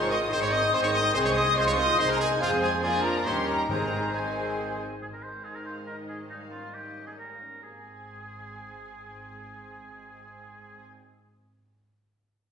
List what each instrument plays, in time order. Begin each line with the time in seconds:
Already playing: double bass section G#1, bassoon D#3, cello section F4, clarinet G#4, oboe C5
0.00 viola section G#3 D#4, violin section D#4 C5 C#6, trumpet C#5, flute section C#6
0.11 viola section D#3 C4, violin section C4 G#4 D#6, trumpet D#5, flute section D#6
0.22 viola section G#3 D#4, violin section D#4 C5
0.31 double bass section G#1, viola section D#3 C4, bassoon D#3, violin section C4 G#4 C6, cello section D#4, clarinet G#4, oboe C5, trumpet C5, flute section C6
0.41 viola section G#3 D#4, violin section D#4 C5 C#6, trumpet C#5, flute section C#6
0.51 viola section D#3 C4, violin section C4 G#4 D#6, trumpet D#5, flute section D#6
0.63 viola section G#3 D#4, violin section D#4 C5
0.73 double bass section G#1, viola section D#3 C4, bassoon D#3, violin section C4 G#4 C6, clarinet G#4, trumpet C5, oboe C5, flute section C6
0.83 viola section G#3 D#4, violin section D#4 C5 C#6, trumpet C#5, flute section C#6
0.92 viola section D#3 C4, violin section C4 G#4 D#6, trumpet D#5, flute section D#6
1.04 viola section G#3 D#4, violin section D#4 C5
1.14 double bass section C2, viola section D#3 C4, french horn section G#3 C4, bassoon G#3, violin section C4 G#4 C6, clarinet G#4, cello section G#4, trumpet C5, oboe C5, flute section C6
1.25 viola section G#3 D#4, violin section D#4 C5 C#6, trumpet C#5, flute section C#6
1.35 viola section D#3 C4, violin section C4 G#4 D#6, trumpet D#5, flute section D#6
1.46 viola section G#3 D#4, violin section D#4 C5
1.55 double bass section C2, viola section D#3 C4, bassoon G#3, violin section C4 G#4 C6, cello section F4, clarinet G#4, trumpet C5, oboe C5, flute section C6
1.66 viola section G#3 D#4, violin section D#4 C5 C#6, trumpet C#5, flute section C#6
1.76 viola section D#3 C4, violin section C4 G#4 D#6, trumpet D#5, flute section D#6
1.87 viola section G#3 D#4, violin section D#4 C5
1.98 double bass section C2, viola section D#3 C4, bassoon G#3, violin section C4 G#4 C6, cello section D#4, clarinet G#4, trumpet C5, oboe C5, flute section C6
2.08 viola section G#3 D#4, violin section D#4 C5 A#5, trumpet A#4, flute section A#5
2.18 viola section D#3 C4, violin section C4 G#4 G#5, trumpet G#4, flute section G#5
2.30 viola section G#3 D#4, violin section D#4 C5
2.40 double bass section F2, bassoon F3, french horn section G#3 C4, viola section G#3 C4, violin section C4 G#4 F5, trumpet F4, cello section G#4, clarinet G#4, oboe C5, flute section F5
2.61 viola section G3, trumpet G#4, violin section G#5, flute section G#5
2.82 bassoon F3, viola section F3 A#3, french horn section A#3 D4, violin section D4 A#4 G#5, cello section F4, trumpet G#4, clarinet A#4, oboe D5, flute section G#5
3.03 trumpet A#4, violin section A#5, flute section A#5
3.25 double bass section D#2, bassoon D#3, french horn section G3 C#4, viola section G3 C#4, violin section D#4 A#4 C6, cello section G4, clarinet G4, trumpet C5, oboe C#5, flute section C6
3.48 trumpet A#4, flute section A#5, violin section A#5
3.68 double bass section G#1, timpani G#2, bassoon D#3, french horn section G#3 C4, viola section G#3 C4, violin section D#4 C5 A#5, cello section G#4, clarinet G#4, trumpet A#4, oboe C5, flute section A#5
4.14 bassoon D#3, viola section G#3 C4, french horn section G#3 C4, violin section D#4 C5 G#5, trumpet G#4, clarinet G#4, oboe C5, flute section G#5
5.02 double bass section G#1, cello section G#2, viola section D#3 G#3, violin section G#3 D#4 C5, oboe G#4
5.13 violin section C4, oboe A#4
5.23 violin section G#3, oboe C5
5.35 violin section C4
5.44 violin section G#3 F5, oboe G#4
5.55 violin section C4, oboe A#4
5.65 violin section G#3, oboe C5
5.78 violin section C4
5.87 violin section G#3 D#5, oboe A#4
5.99 violin section C4
6.08 violin section G#3, oboe G#4
6.20 violin section C4
6.30 violin section G3 F5, viola section G3, oboe D#4
6.40 violin section A#3
6.51 violin section C#4, oboe F4
6.61 violin section A#3
6.73 violin section G3 D#5, oboe G4
6.84 violin section A#3
6.95 violin section C#4
7.06 violin section A#3, oboe G#4
7.18 violin section G3 C#5, oboe A#4
7.29 violin section A#3
7.41 violin section C#4
7.52 violin section A#3
7.63 double bass section G#1, cello section G#2, viola section C4, oboe G#4, violin section G#4 G#5